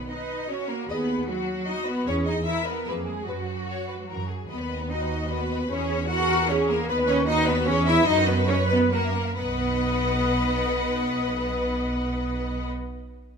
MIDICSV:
0, 0, Header, 1, 6, 480
1, 0, Start_track
1, 0, Key_signature, 5, "major"
1, 0, Tempo, 395257
1, 1081, Time_signature, 3, 2, 24, 8
1, 3475, Tempo, 408441
1, 6355, Tempo, 394477
1, 9715, Tempo, 426439
1, 15685, End_track
2, 0, Start_track
2, 0, Title_t, "Violin section"
2, 0, Program_c, 0, 48
2, 1086, Note_on_c, 0, 75, 53
2, 1306, Note_off_c, 0, 75, 0
2, 2511, Note_on_c, 0, 73, 57
2, 2736, Note_off_c, 0, 73, 0
2, 3490, Note_on_c, 0, 71, 54
2, 3703, Note_off_c, 0, 71, 0
2, 3953, Note_on_c, 0, 71, 44
2, 4176, Note_off_c, 0, 71, 0
2, 4437, Note_on_c, 0, 73, 66
2, 4664, Note_off_c, 0, 73, 0
2, 4668, Note_on_c, 0, 71, 54
2, 4762, Note_off_c, 0, 71, 0
2, 4912, Note_on_c, 0, 70, 58
2, 5146, Note_on_c, 0, 68, 49
2, 5153, Note_off_c, 0, 70, 0
2, 5392, Note_on_c, 0, 75, 50
2, 5394, Note_off_c, 0, 68, 0
2, 5508, Note_off_c, 0, 75, 0
2, 5521, Note_on_c, 0, 71, 46
2, 5632, Note_on_c, 0, 75, 52
2, 5641, Note_off_c, 0, 71, 0
2, 5756, Note_off_c, 0, 75, 0
2, 5761, Note_on_c, 0, 71, 47
2, 5881, Note_off_c, 0, 71, 0
2, 5893, Note_on_c, 0, 75, 52
2, 5999, Note_off_c, 0, 75, 0
2, 6008, Note_on_c, 0, 71, 52
2, 6123, Note_off_c, 0, 71, 0
2, 6133, Note_on_c, 0, 75, 46
2, 6244, Note_off_c, 0, 75, 0
2, 6254, Note_on_c, 0, 71, 48
2, 6354, Note_on_c, 0, 75, 55
2, 6363, Note_off_c, 0, 71, 0
2, 6466, Note_off_c, 0, 75, 0
2, 6470, Note_on_c, 0, 71, 51
2, 6591, Note_on_c, 0, 75, 57
2, 6592, Note_off_c, 0, 71, 0
2, 6704, Note_on_c, 0, 71, 51
2, 6713, Note_off_c, 0, 75, 0
2, 6829, Note_off_c, 0, 71, 0
2, 6843, Note_on_c, 0, 64, 60
2, 6949, Note_on_c, 0, 68, 55
2, 6950, Note_off_c, 0, 64, 0
2, 7055, Note_on_c, 0, 64, 63
2, 7071, Note_off_c, 0, 68, 0
2, 7184, Note_off_c, 0, 64, 0
2, 7185, Note_on_c, 0, 68, 55
2, 7296, Note_on_c, 0, 64, 63
2, 7309, Note_off_c, 0, 68, 0
2, 7416, Note_off_c, 0, 64, 0
2, 7428, Note_on_c, 0, 68, 64
2, 7550, Note_off_c, 0, 68, 0
2, 7560, Note_on_c, 0, 64, 61
2, 7671, Note_on_c, 0, 68, 61
2, 7675, Note_off_c, 0, 64, 0
2, 7790, Note_off_c, 0, 68, 0
2, 7800, Note_on_c, 0, 64, 65
2, 7906, Note_off_c, 0, 64, 0
2, 7924, Note_on_c, 0, 68, 60
2, 8037, Note_off_c, 0, 68, 0
2, 8054, Note_on_c, 0, 64, 64
2, 8163, Note_off_c, 0, 64, 0
2, 8169, Note_on_c, 0, 68, 65
2, 8277, Note_on_c, 0, 75, 69
2, 8281, Note_off_c, 0, 68, 0
2, 8387, Note_off_c, 0, 75, 0
2, 8387, Note_on_c, 0, 71, 65
2, 8510, Note_off_c, 0, 71, 0
2, 8521, Note_on_c, 0, 75, 79
2, 8636, Note_off_c, 0, 75, 0
2, 8644, Note_on_c, 0, 71, 62
2, 8756, Note_off_c, 0, 71, 0
2, 8772, Note_on_c, 0, 75, 81
2, 8872, Note_off_c, 0, 75, 0
2, 8880, Note_on_c, 0, 71, 72
2, 8993, Note_off_c, 0, 71, 0
2, 8993, Note_on_c, 0, 75, 68
2, 9095, Note_on_c, 0, 71, 67
2, 9109, Note_off_c, 0, 75, 0
2, 9220, Note_off_c, 0, 71, 0
2, 9235, Note_on_c, 0, 73, 77
2, 9343, Note_off_c, 0, 73, 0
2, 9361, Note_on_c, 0, 71, 66
2, 9467, Note_on_c, 0, 73, 69
2, 9476, Note_off_c, 0, 71, 0
2, 9590, Note_off_c, 0, 73, 0
2, 9601, Note_on_c, 0, 71, 65
2, 9719, Note_off_c, 0, 71, 0
2, 9721, Note_on_c, 0, 75, 72
2, 9824, Note_off_c, 0, 75, 0
2, 9835, Note_on_c, 0, 71, 64
2, 9947, Note_off_c, 0, 71, 0
2, 9955, Note_on_c, 0, 75, 70
2, 10065, Note_off_c, 0, 75, 0
2, 10067, Note_on_c, 0, 71, 64
2, 10177, Note_on_c, 0, 75, 71
2, 10181, Note_off_c, 0, 71, 0
2, 10288, Note_off_c, 0, 75, 0
2, 10300, Note_on_c, 0, 71, 67
2, 10419, Note_off_c, 0, 71, 0
2, 10427, Note_on_c, 0, 75, 62
2, 10541, Note_on_c, 0, 71, 57
2, 10544, Note_off_c, 0, 75, 0
2, 10656, Note_on_c, 0, 78, 65
2, 10664, Note_off_c, 0, 71, 0
2, 10776, Note_off_c, 0, 78, 0
2, 10790, Note_on_c, 0, 76, 57
2, 10906, Note_on_c, 0, 78, 60
2, 10917, Note_off_c, 0, 76, 0
2, 11039, Note_off_c, 0, 78, 0
2, 11044, Note_on_c, 0, 76, 51
2, 11164, Note_on_c, 0, 78, 75
2, 11168, Note_off_c, 0, 76, 0
2, 14887, Note_off_c, 0, 78, 0
2, 15685, End_track
3, 0, Start_track
3, 0, Title_t, "Violin section"
3, 0, Program_c, 1, 48
3, 110, Note_on_c, 1, 75, 60
3, 591, Note_off_c, 1, 75, 0
3, 604, Note_on_c, 1, 73, 68
3, 836, Note_on_c, 1, 70, 59
3, 842, Note_off_c, 1, 73, 0
3, 1077, Note_off_c, 1, 70, 0
3, 1084, Note_on_c, 1, 71, 63
3, 1544, Note_on_c, 1, 66, 70
3, 1551, Note_off_c, 1, 71, 0
3, 2013, Note_off_c, 1, 66, 0
3, 2027, Note_on_c, 1, 75, 82
3, 2260, Note_on_c, 1, 71, 68
3, 2266, Note_off_c, 1, 75, 0
3, 2503, Note_on_c, 1, 73, 77
3, 2505, Note_off_c, 1, 71, 0
3, 2601, Note_off_c, 1, 73, 0
3, 2737, Note_on_c, 1, 75, 71
3, 2974, Note_on_c, 1, 76, 77
3, 2980, Note_off_c, 1, 75, 0
3, 3208, Note_on_c, 1, 71, 65
3, 3219, Note_off_c, 1, 76, 0
3, 3452, Note_on_c, 1, 70, 55
3, 3462, Note_off_c, 1, 71, 0
3, 3547, Note_off_c, 1, 70, 0
3, 3694, Note_on_c, 1, 68, 52
3, 3922, Note_on_c, 1, 66, 57
3, 3937, Note_off_c, 1, 68, 0
3, 5149, Note_off_c, 1, 66, 0
3, 5386, Note_on_c, 1, 71, 64
3, 5838, Note_off_c, 1, 71, 0
3, 5875, Note_on_c, 1, 75, 67
3, 6342, Note_off_c, 1, 75, 0
3, 6348, Note_on_c, 1, 71, 71
3, 6830, Note_on_c, 1, 73, 79
3, 6831, Note_off_c, 1, 71, 0
3, 7296, Note_on_c, 1, 78, 92
3, 7311, Note_off_c, 1, 73, 0
3, 7773, Note_off_c, 1, 78, 0
3, 7798, Note_on_c, 1, 73, 80
3, 8032, Note_on_c, 1, 70, 76
3, 8034, Note_off_c, 1, 73, 0
3, 8268, Note_off_c, 1, 70, 0
3, 8268, Note_on_c, 1, 71, 88
3, 8365, Note_off_c, 1, 71, 0
3, 8509, Note_on_c, 1, 73, 94
3, 8605, Note_off_c, 1, 73, 0
3, 8734, Note_on_c, 1, 75, 101
3, 8964, Note_on_c, 1, 71, 94
3, 8974, Note_off_c, 1, 75, 0
3, 9212, Note_on_c, 1, 73, 104
3, 9214, Note_off_c, 1, 71, 0
3, 9455, Note_on_c, 1, 76, 95
3, 9461, Note_off_c, 1, 73, 0
3, 9702, Note_off_c, 1, 76, 0
3, 9702, Note_on_c, 1, 75, 104
3, 9936, Note_on_c, 1, 71, 92
3, 9938, Note_off_c, 1, 75, 0
3, 10172, Note_on_c, 1, 73, 96
3, 10173, Note_off_c, 1, 71, 0
3, 10410, Note_on_c, 1, 71, 88
3, 10415, Note_off_c, 1, 73, 0
3, 10500, Note_off_c, 1, 71, 0
3, 10665, Note_on_c, 1, 70, 79
3, 11159, Note_off_c, 1, 70, 0
3, 11170, Note_on_c, 1, 71, 81
3, 14890, Note_off_c, 1, 71, 0
3, 15685, End_track
4, 0, Start_track
4, 0, Title_t, "Viola section"
4, 0, Program_c, 2, 48
4, 122, Note_on_c, 2, 71, 57
4, 574, Note_off_c, 2, 71, 0
4, 603, Note_on_c, 2, 66, 57
4, 1070, Note_off_c, 2, 66, 0
4, 1088, Note_on_c, 2, 68, 64
4, 1558, Note_on_c, 2, 66, 66
4, 1562, Note_off_c, 2, 68, 0
4, 2020, Note_off_c, 2, 66, 0
4, 2036, Note_on_c, 2, 66, 69
4, 2503, Note_off_c, 2, 66, 0
4, 2516, Note_on_c, 2, 68, 71
4, 2987, Note_off_c, 2, 68, 0
4, 2999, Note_on_c, 2, 70, 68
4, 3469, Note_off_c, 2, 70, 0
4, 3479, Note_on_c, 2, 68, 61
4, 3952, Note_off_c, 2, 68, 0
4, 3956, Note_on_c, 2, 66, 49
4, 5167, Note_off_c, 2, 66, 0
4, 5883, Note_on_c, 2, 66, 67
4, 6786, Note_off_c, 2, 66, 0
4, 6828, Note_on_c, 2, 68, 73
4, 7300, Note_off_c, 2, 68, 0
4, 7305, Note_on_c, 2, 70, 81
4, 7777, Note_off_c, 2, 70, 0
4, 7789, Note_on_c, 2, 68, 82
4, 8264, Note_on_c, 2, 71, 93
4, 8272, Note_off_c, 2, 68, 0
4, 8736, Note_off_c, 2, 71, 0
4, 8738, Note_on_c, 2, 66, 89
4, 9210, Note_off_c, 2, 66, 0
4, 9226, Note_on_c, 2, 68, 90
4, 9714, Note_off_c, 2, 68, 0
4, 9718, Note_on_c, 2, 66, 86
4, 10170, Note_off_c, 2, 66, 0
4, 10189, Note_on_c, 2, 71, 98
4, 10669, Note_off_c, 2, 71, 0
4, 10681, Note_on_c, 2, 70, 82
4, 10926, Note_off_c, 2, 70, 0
4, 11182, Note_on_c, 2, 75, 78
4, 11184, Note_on_c, 2, 71, 81
4, 14896, Note_off_c, 2, 75, 0
4, 14897, Note_off_c, 2, 71, 0
4, 15685, End_track
5, 0, Start_track
5, 0, Title_t, "Cello section"
5, 0, Program_c, 3, 48
5, 119, Note_on_c, 3, 63, 69
5, 606, Note_off_c, 3, 63, 0
5, 608, Note_on_c, 3, 61, 70
5, 844, Note_off_c, 3, 61, 0
5, 853, Note_on_c, 3, 58, 67
5, 1086, Note_off_c, 3, 58, 0
5, 1098, Note_on_c, 3, 59, 81
5, 1558, Note_off_c, 3, 59, 0
5, 1575, Note_on_c, 3, 54, 80
5, 2037, Note_off_c, 3, 54, 0
5, 2045, Note_on_c, 3, 63, 80
5, 2275, Note_off_c, 3, 63, 0
5, 2280, Note_on_c, 3, 59, 82
5, 2510, Note_off_c, 3, 59, 0
5, 2524, Note_on_c, 3, 61, 93
5, 2759, Note_off_c, 3, 61, 0
5, 2766, Note_on_c, 3, 63, 85
5, 2859, Note_off_c, 3, 63, 0
5, 3000, Note_on_c, 3, 64, 83
5, 3232, Note_off_c, 3, 64, 0
5, 3237, Note_on_c, 3, 59, 71
5, 3472, Note_off_c, 3, 59, 0
5, 3475, Note_on_c, 3, 58, 62
5, 3712, Note_off_c, 3, 58, 0
5, 3724, Note_on_c, 3, 56, 61
5, 3956, Note_on_c, 3, 54, 58
5, 3957, Note_off_c, 3, 56, 0
5, 4714, Note_off_c, 3, 54, 0
5, 4736, Note_on_c, 3, 56, 51
5, 4840, Note_on_c, 3, 54, 49
5, 4841, Note_off_c, 3, 56, 0
5, 4941, Note_on_c, 3, 52, 45
5, 4948, Note_off_c, 3, 54, 0
5, 5052, Note_off_c, 3, 52, 0
5, 5052, Note_on_c, 3, 54, 50
5, 5162, Note_off_c, 3, 54, 0
5, 5405, Note_on_c, 3, 59, 77
5, 5848, Note_off_c, 3, 59, 0
5, 5879, Note_on_c, 3, 63, 77
5, 6351, Note_on_c, 3, 59, 73
5, 6354, Note_off_c, 3, 63, 0
5, 6818, Note_on_c, 3, 61, 93
5, 6823, Note_off_c, 3, 59, 0
5, 7295, Note_off_c, 3, 61, 0
5, 7296, Note_on_c, 3, 66, 113
5, 7772, Note_off_c, 3, 66, 0
5, 7780, Note_on_c, 3, 61, 91
5, 8018, Note_on_c, 3, 58, 91
5, 8025, Note_off_c, 3, 61, 0
5, 8266, Note_off_c, 3, 58, 0
5, 8266, Note_on_c, 3, 59, 99
5, 8504, Note_on_c, 3, 61, 112
5, 8510, Note_off_c, 3, 59, 0
5, 8741, Note_off_c, 3, 61, 0
5, 8749, Note_on_c, 3, 63, 123
5, 8982, Note_off_c, 3, 63, 0
5, 8984, Note_on_c, 3, 59, 110
5, 9224, Note_off_c, 3, 59, 0
5, 9226, Note_on_c, 3, 61, 112
5, 9468, Note_off_c, 3, 61, 0
5, 9471, Note_on_c, 3, 64, 118
5, 9712, Note_on_c, 3, 63, 116
5, 9715, Note_off_c, 3, 64, 0
5, 9938, Note_off_c, 3, 63, 0
5, 9946, Note_on_c, 3, 59, 102
5, 10036, Note_off_c, 3, 59, 0
5, 10172, Note_on_c, 3, 61, 109
5, 10262, Note_off_c, 3, 61, 0
5, 10421, Note_on_c, 3, 59, 98
5, 10660, Note_off_c, 3, 59, 0
5, 10668, Note_on_c, 3, 58, 79
5, 11160, Note_off_c, 3, 58, 0
5, 11171, Note_on_c, 3, 59, 94
5, 14890, Note_off_c, 3, 59, 0
5, 15685, End_track
6, 0, Start_track
6, 0, Title_t, "Double bass section"
6, 0, Program_c, 4, 48
6, 1078, Note_on_c, 4, 39, 62
6, 1478, Note_off_c, 4, 39, 0
6, 2501, Note_on_c, 4, 40, 75
6, 2908, Note_off_c, 4, 40, 0
6, 3478, Note_on_c, 4, 41, 57
6, 3872, Note_off_c, 4, 41, 0
6, 3946, Note_on_c, 4, 42, 56
6, 4352, Note_off_c, 4, 42, 0
6, 4936, Note_on_c, 4, 42, 50
6, 5330, Note_off_c, 4, 42, 0
6, 5401, Note_on_c, 4, 39, 63
6, 6784, Note_off_c, 4, 39, 0
6, 6839, Note_on_c, 4, 40, 72
6, 8246, Note_off_c, 4, 40, 0
6, 8263, Note_on_c, 4, 39, 87
6, 9202, Note_off_c, 4, 39, 0
6, 9224, Note_on_c, 4, 40, 89
6, 9712, Note_on_c, 4, 42, 92
6, 9713, Note_off_c, 4, 40, 0
6, 10894, Note_off_c, 4, 42, 0
6, 11179, Note_on_c, 4, 35, 84
6, 14894, Note_off_c, 4, 35, 0
6, 15685, End_track
0, 0, End_of_file